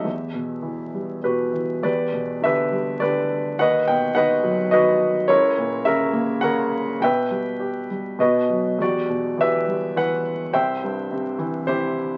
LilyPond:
<<
  \new Staff \with { instrumentName = "Grand piano" } { \time 3/4 \key e \minor \tempo 4 = 104 << { e''2 b'4 | d''4 e''4 d''4 | fis''8 g''8 fis''4 dis''4 | cis''4 e''4 fis''4 |
g''4. r8 dis''4 | d''4 e''4 fis''4 | g''4. r8 c''4 | } \\ { g'2 <fis' g'>4 | <g' b'>4 <g' b'>4 <g' b'>4 | <b' dis''>4 <b' dis''>4 <fis' b'>4 | <e' ais'>4 ais'4 ais'4 |
<b' e''>4. r8 <fis' b'>4 | <fis' g'>4 <g' b'>4 b'4 | <c'' e''>4. r8 <e' g'>4 | } >> }
  \new Staff \with { instrumentName = "Grand piano" } { \clef bass \time 3/4 \key e \minor e,8 b,8 e8 g8 b,8 e8 | e,8 b,8 d8 g8 d4 | dis,8 b,8 dis8 fis8 dis4 | cis,8 ais,8 cis8 ais8 cis4 |
b,8 g8 g'8 g8 b,8 fis8 | e,8 b,8 e8 g8 e4 | c,8 g,8 c8 e8 c4 | }
>>